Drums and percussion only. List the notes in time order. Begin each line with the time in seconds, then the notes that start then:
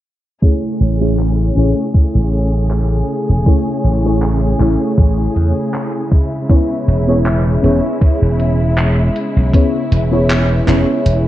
0.42 kick, closed hi-hat
0.81 closed hi-hat
1.19 clap, closed hi-hat
1.57 closed hi-hat
1.94 kick, closed hi-hat
2.33 closed hi-hat
2.71 clap, closed hi-hat
3.09 closed hi-hat
3.46 kick, closed hi-hat
3.85 closed hi-hat
4.22 clap, closed hi-hat
4.60 clap, closed hi-hat
4.98 kick, closed hi-hat
5.36 closed hi-hat
5.74 clap, closed hi-hat
6.12 kick, closed hi-hat
6.50 kick, closed hi-hat
6.88 closed hi-hat
7.26 clap, closed hi-hat
7.64 closed hi-hat
8.01 kick, closed hi-hat
8.40 closed hi-hat
8.78 clap, closed hi-hat
9.16 closed hi-hat
9.54 kick, closed hi-hat
9.92 closed hi-hat
10.30 clap, closed hi-hat
10.68 clap, closed hi-hat
11.06 closed hi-hat